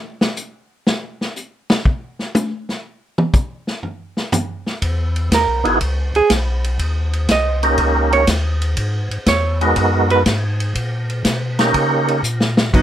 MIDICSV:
0, 0, Header, 1, 5, 480
1, 0, Start_track
1, 0, Tempo, 494641
1, 837, Time_signature, 4, 2, 24, 8
1, 12443, End_track
2, 0, Start_track
2, 0, Title_t, "Hollow-body jazz guitar"
2, 0, Program_c, 0, 26
2, 5186, Note_on_c, 0, 70, 71
2, 5944, Note_off_c, 0, 70, 0
2, 5979, Note_on_c, 0, 68, 85
2, 6118, Note_off_c, 0, 68, 0
2, 7100, Note_on_c, 0, 75, 87
2, 7860, Note_off_c, 0, 75, 0
2, 7891, Note_on_c, 0, 73, 94
2, 8033, Note_off_c, 0, 73, 0
2, 9011, Note_on_c, 0, 73, 77
2, 9775, Note_off_c, 0, 73, 0
2, 9814, Note_on_c, 0, 71, 88
2, 9901, Note_off_c, 0, 71, 0
2, 12357, Note_on_c, 0, 54, 56
2, 12370, Note_on_c, 0, 59, 51
2, 12370, Note_on_c, 0, 63, 59
2, 12443, Note_off_c, 0, 54, 0
2, 12443, Note_off_c, 0, 59, 0
2, 12443, Note_off_c, 0, 63, 0
2, 12443, End_track
3, 0, Start_track
3, 0, Title_t, "Tonewheel organ"
3, 0, Program_c, 1, 16
3, 5471, Note_on_c, 1, 59, 74
3, 5477, Note_on_c, 1, 63, 64
3, 5481, Note_on_c, 1, 64, 66
3, 5482, Note_on_c, 1, 66, 65
3, 5492, Note_on_c, 1, 68, 85
3, 5614, Note_off_c, 1, 59, 0
3, 5617, Note_off_c, 1, 63, 0
3, 5619, Note_off_c, 1, 64, 0
3, 5619, Note_off_c, 1, 66, 0
3, 5624, Note_off_c, 1, 68, 0
3, 7405, Note_on_c, 1, 58, 75
3, 7405, Note_on_c, 1, 61, 63
3, 7409, Note_on_c, 1, 63, 67
3, 7411, Note_on_c, 1, 67, 75
3, 7421, Note_on_c, 1, 70, 74
3, 8005, Note_off_c, 1, 58, 0
3, 8005, Note_off_c, 1, 61, 0
3, 8007, Note_off_c, 1, 63, 0
3, 8008, Note_off_c, 1, 67, 0
3, 8013, Note_off_c, 1, 70, 0
3, 9327, Note_on_c, 1, 59, 67
3, 9328, Note_on_c, 1, 56, 64
3, 9336, Note_on_c, 1, 63, 74
3, 9336, Note_on_c, 1, 66, 62
3, 9343, Note_on_c, 1, 70, 87
3, 9926, Note_off_c, 1, 56, 0
3, 9926, Note_off_c, 1, 59, 0
3, 9930, Note_off_c, 1, 63, 0
3, 9930, Note_off_c, 1, 66, 0
3, 9934, Note_off_c, 1, 70, 0
3, 11246, Note_on_c, 1, 58, 72
3, 11252, Note_on_c, 1, 61, 61
3, 11254, Note_on_c, 1, 63, 68
3, 11262, Note_on_c, 1, 67, 64
3, 11264, Note_on_c, 1, 70, 76
3, 11847, Note_off_c, 1, 58, 0
3, 11850, Note_off_c, 1, 61, 0
3, 11851, Note_off_c, 1, 63, 0
3, 11855, Note_off_c, 1, 67, 0
3, 11856, Note_off_c, 1, 70, 0
3, 12378, Note_on_c, 1, 66, 72
3, 12443, Note_off_c, 1, 66, 0
3, 12443, End_track
4, 0, Start_track
4, 0, Title_t, "Tonewheel organ"
4, 0, Program_c, 2, 16
4, 4676, Note_on_c, 2, 40, 91
4, 5142, Note_off_c, 2, 40, 0
4, 5154, Note_on_c, 2, 39, 84
4, 5305, Note_on_c, 2, 35, 54
4, 5311, Note_off_c, 2, 39, 0
4, 5466, Note_on_c, 2, 32, 59
4, 5471, Note_off_c, 2, 35, 0
4, 5620, Note_off_c, 2, 32, 0
4, 5631, Note_on_c, 2, 37, 85
4, 5942, Note_off_c, 2, 37, 0
4, 5954, Note_on_c, 2, 37, 37
4, 6032, Note_off_c, 2, 37, 0
4, 6112, Note_on_c, 2, 35, 97
4, 6580, Note_off_c, 2, 35, 0
4, 6591, Note_on_c, 2, 39, 89
4, 7059, Note_off_c, 2, 39, 0
4, 7070, Note_on_c, 2, 36, 88
4, 7538, Note_off_c, 2, 36, 0
4, 7547, Note_on_c, 2, 37, 81
4, 8017, Note_off_c, 2, 37, 0
4, 8027, Note_on_c, 2, 39, 95
4, 8496, Note_off_c, 2, 39, 0
4, 8510, Note_on_c, 2, 44, 101
4, 8820, Note_off_c, 2, 44, 0
4, 8834, Note_on_c, 2, 44, 44
4, 8912, Note_off_c, 2, 44, 0
4, 8989, Note_on_c, 2, 40, 85
4, 9458, Note_off_c, 2, 40, 0
4, 9473, Note_on_c, 2, 42, 87
4, 9940, Note_off_c, 2, 42, 0
4, 9953, Note_on_c, 2, 44, 103
4, 10420, Note_off_c, 2, 44, 0
4, 10431, Note_on_c, 2, 46, 83
4, 10899, Note_off_c, 2, 46, 0
4, 10911, Note_on_c, 2, 47, 88
4, 11380, Note_off_c, 2, 47, 0
4, 11393, Note_on_c, 2, 49, 93
4, 11861, Note_off_c, 2, 49, 0
4, 11866, Note_on_c, 2, 46, 95
4, 12339, Note_off_c, 2, 46, 0
4, 12357, Note_on_c, 2, 44, 81
4, 12443, Note_off_c, 2, 44, 0
4, 12443, End_track
5, 0, Start_track
5, 0, Title_t, "Drums"
5, 205, Note_on_c, 9, 38, 87
5, 302, Note_off_c, 9, 38, 0
5, 353, Note_on_c, 9, 44, 56
5, 450, Note_off_c, 9, 44, 0
5, 841, Note_on_c, 9, 38, 89
5, 938, Note_off_c, 9, 38, 0
5, 1176, Note_on_c, 9, 38, 41
5, 1273, Note_off_c, 9, 38, 0
5, 1318, Note_on_c, 9, 44, 52
5, 1415, Note_off_c, 9, 44, 0
5, 1649, Note_on_c, 9, 38, 101
5, 1746, Note_off_c, 9, 38, 0
5, 1800, Note_on_c, 9, 36, 71
5, 1897, Note_off_c, 9, 36, 0
5, 2128, Note_on_c, 9, 38, 34
5, 2225, Note_off_c, 9, 38, 0
5, 2278, Note_on_c, 9, 44, 62
5, 2279, Note_on_c, 9, 48, 100
5, 2375, Note_off_c, 9, 44, 0
5, 2376, Note_off_c, 9, 48, 0
5, 2610, Note_on_c, 9, 38, 41
5, 2707, Note_off_c, 9, 38, 0
5, 3087, Note_on_c, 9, 47, 85
5, 3184, Note_off_c, 9, 47, 0
5, 3233, Note_on_c, 9, 44, 55
5, 3238, Note_on_c, 9, 36, 82
5, 3330, Note_off_c, 9, 44, 0
5, 3335, Note_off_c, 9, 36, 0
5, 3564, Note_on_c, 9, 38, 43
5, 3661, Note_off_c, 9, 38, 0
5, 3714, Note_on_c, 9, 43, 42
5, 3811, Note_off_c, 9, 43, 0
5, 4045, Note_on_c, 9, 38, 46
5, 4142, Note_off_c, 9, 38, 0
5, 4195, Note_on_c, 9, 44, 63
5, 4196, Note_on_c, 9, 43, 93
5, 4292, Note_off_c, 9, 44, 0
5, 4293, Note_off_c, 9, 43, 0
5, 4527, Note_on_c, 9, 38, 41
5, 4624, Note_off_c, 9, 38, 0
5, 4676, Note_on_c, 9, 51, 69
5, 4679, Note_on_c, 9, 36, 24
5, 4773, Note_off_c, 9, 51, 0
5, 4776, Note_off_c, 9, 36, 0
5, 5005, Note_on_c, 9, 51, 43
5, 5102, Note_off_c, 9, 51, 0
5, 5158, Note_on_c, 9, 36, 18
5, 5159, Note_on_c, 9, 44, 59
5, 5159, Note_on_c, 9, 51, 73
5, 5160, Note_on_c, 9, 38, 72
5, 5255, Note_off_c, 9, 36, 0
5, 5256, Note_off_c, 9, 44, 0
5, 5256, Note_off_c, 9, 51, 0
5, 5257, Note_off_c, 9, 38, 0
5, 5484, Note_on_c, 9, 51, 46
5, 5581, Note_off_c, 9, 51, 0
5, 5634, Note_on_c, 9, 51, 71
5, 5636, Note_on_c, 9, 36, 25
5, 5731, Note_off_c, 9, 51, 0
5, 5734, Note_off_c, 9, 36, 0
5, 5966, Note_on_c, 9, 51, 45
5, 6063, Note_off_c, 9, 51, 0
5, 6111, Note_on_c, 9, 44, 60
5, 6111, Note_on_c, 9, 51, 79
5, 6112, Note_on_c, 9, 38, 71
5, 6116, Note_on_c, 9, 36, 21
5, 6208, Note_off_c, 9, 44, 0
5, 6208, Note_off_c, 9, 51, 0
5, 6209, Note_off_c, 9, 38, 0
5, 6213, Note_off_c, 9, 36, 0
5, 6446, Note_on_c, 9, 51, 55
5, 6543, Note_off_c, 9, 51, 0
5, 6591, Note_on_c, 9, 51, 64
5, 6595, Note_on_c, 9, 36, 18
5, 6688, Note_off_c, 9, 51, 0
5, 6692, Note_off_c, 9, 36, 0
5, 6922, Note_on_c, 9, 51, 46
5, 7019, Note_off_c, 9, 51, 0
5, 7069, Note_on_c, 9, 44, 57
5, 7069, Note_on_c, 9, 51, 74
5, 7070, Note_on_c, 9, 38, 71
5, 7073, Note_on_c, 9, 36, 23
5, 7167, Note_off_c, 9, 38, 0
5, 7167, Note_off_c, 9, 44, 0
5, 7167, Note_off_c, 9, 51, 0
5, 7170, Note_off_c, 9, 36, 0
5, 7401, Note_on_c, 9, 51, 50
5, 7498, Note_off_c, 9, 51, 0
5, 7546, Note_on_c, 9, 51, 59
5, 7552, Note_on_c, 9, 36, 24
5, 7643, Note_off_c, 9, 51, 0
5, 7649, Note_off_c, 9, 36, 0
5, 7884, Note_on_c, 9, 51, 48
5, 7981, Note_off_c, 9, 51, 0
5, 8027, Note_on_c, 9, 44, 67
5, 8027, Note_on_c, 9, 51, 77
5, 8028, Note_on_c, 9, 38, 71
5, 8032, Note_on_c, 9, 36, 26
5, 8124, Note_off_c, 9, 44, 0
5, 8124, Note_off_c, 9, 51, 0
5, 8125, Note_off_c, 9, 38, 0
5, 8129, Note_off_c, 9, 36, 0
5, 8360, Note_on_c, 9, 51, 51
5, 8457, Note_off_c, 9, 51, 0
5, 8507, Note_on_c, 9, 51, 70
5, 8512, Note_on_c, 9, 36, 19
5, 8604, Note_off_c, 9, 51, 0
5, 8609, Note_off_c, 9, 36, 0
5, 8842, Note_on_c, 9, 51, 44
5, 8939, Note_off_c, 9, 51, 0
5, 8989, Note_on_c, 9, 44, 58
5, 8989, Note_on_c, 9, 51, 73
5, 8990, Note_on_c, 9, 38, 80
5, 8993, Note_on_c, 9, 36, 26
5, 9086, Note_off_c, 9, 44, 0
5, 9086, Note_off_c, 9, 51, 0
5, 9087, Note_off_c, 9, 38, 0
5, 9091, Note_off_c, 9, 36, 0
5, 9326, Note_on_c, 9, 51, 47
5, 9423, Note_off_c, 9, 51, 0
5, 9470, Note_on_c, 9, 51, 67
5, 9474, Note_on_c, 9, 36, 22
5, 9567, Note_off_c, 9, 51, 0
5, 9571, Note_off_c, 9, 36, 0
5, 9803, Note_on_c, 9, 51, 47
5, 9900, Note_off_c, 9, 51, 0
5, 9953, Note_on_c, 9, 44, 58
5, 9953, Note_on_c, 9, 51, 78
5, 9954, Note_on_c, 9, 38, 79
5, 9955, Note_on_c, 9, 36, 26
5, 10050, Note_off_c, 9, 44, 0
5, 10050, Note_off_c, 9, 51, 0
5, 10051, Note_off_c, 9, 38, 0
5, 10052, Note_off_c, 9, 36, 0
5, 10287, Note_on_c, 9, 51, 55
5, 10384, Note_off_c, 9, 51, 0
5, 10435, Note_on_c, 9, 51, 64
5, 10436, Note_on_c, 9, 36, 20
5, 10532, Note_off_c, 9, 51, 0
5, 10533, Note_off_c, 9, 36, 0
5, 10767, Note_on_c, 9, 51, 46
5, 10864, Note_off_c, 9, 51, 0
5, 10913, Note_on_c, 9, 44, 54
5, 10913, Note_on_c, 9, 51, 72
5, 10914, Note_on_c, 9, 38, 69
5, 10916, Note_on_c, 9, 36, 19
5, 11010, Note_off_c, 9, 44, 0
5, 11010, Note_off_c, 9, 51, 0
5, 11011, Note_off_c, 9, 38, 0
5, 11013, Note_off_c, 9, 36, 0
5, 11245, Note_on_c, 9, 51, 50
5, 11246, Note_on_c, 9, 38, 68
5, 11342, Note_off_c, 9, 51, 0
5, 11343, Note_off_c, 9, 38, 0
5, 11393, Note_on_c, 9, 51, 65
5, 11396, Note_on_c, 9, 36, 26
5, 11490, Note_off_c, 9, 51, 0
5, 11493, Note_off_c, 9, 36, 0
5, 11726, Note_on_c, 9, 51, 49
5, 11823, Note_off_c, 9, 51, 0
5, 11876, Note_on_c, 9, 44, 70
5, 11973, Note_off_c, 9, 44, 0
5, 12037, Note_on_c, 9, 38, 69
5, 12134, Note_off_c, 9, 38, 0
5, 12200, Note_on_c, 9, 38, 99
5, 12297, Note_off_c, 9, 38, 0
5, 12360, Note_on_c, 9, 36, 68
5, 12362, Note_on_c, 9, 49, 64
5, 12443, Note_off_c, 9, 36, 0
5, 12443, Note_off_c, 9, 49, 0
5, 12443, End_track
0, 0, End_of_file